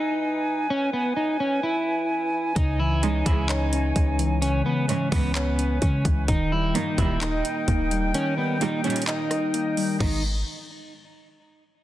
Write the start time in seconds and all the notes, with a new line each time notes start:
Already playing: E3 D#4 B4 G#5
0.70 C#4
0.93 B3
1.17 D#4
1.40 C#4
1.63 E4
2.56 C#2 C#3 D#4 C#5, kick, closed hi-hat
2.79 E3 E4
3.03 C#3 E3 G#3 D#4, closed hi-hat
3.26 C#2 C#3 E3 G#3 C#4 E4, kick, closed hi-hat
3.49 D#4 C#5, clap, closed hi-hat
3.73 C#4, closed hi-hat
3.96 C#2 G#3, kick, closed hi-hat
4.19 E3, closed hi-hat
4.42 C#3 C#4 B4, closed hi-hat
4.66 E3 B3
4.89 G#2 C#3 E3 G#3 C#4, closed hi-hat
5.12 C#2 G#2 C#3 E3 B3 C#4, kick, open hi-hat
5.35 B3 C#5, clap, closed hi-hat
5.59 C#4, closed hi-hat
5.82 C#3 G#3 C#4, kick, closed hi-hat
6.05 C#2 E3, kick, closed hi-hat
6.28 D#1 D#3 D#4 A#4 G5, kick, closed hi-hat
6.52 G3 E4
6.75 G2 A#2 D#3 A#3 D#4, closed hi-hat
6.98 D#1 A#2 D#3 G3 D#4 E4, kick, closed hi-hat
7.21 D#4 D#5, clap, closed hi-hat
7.45 closed hi-hat
7.68 D#1 A#3, kick, closed hi-hat
7.91 G3, closed hi-hat
8.14 D#3 C#4, closed hi-hat
8.38 G3 B3
8.61 A#2 D#3 G3 A#3 D#4, closed hi-hat
8.84 A#2 D#3 G3 C#4 D#4, closed hi-hat
8.90 closed hi-hat
8.96 closed hi-hat
9.02 closed hi-hat
9.07 D#4 D#5, clap, closed hi-hat
9.31 D#4, cross-stick, closed hi-hat
9.54 A#3, closed hi-hat
9.77 G3, open hi-hat
10.00 G#1 B1 G#2 D#3 G#3 B3 D#4 G#4 D#5, kick, crash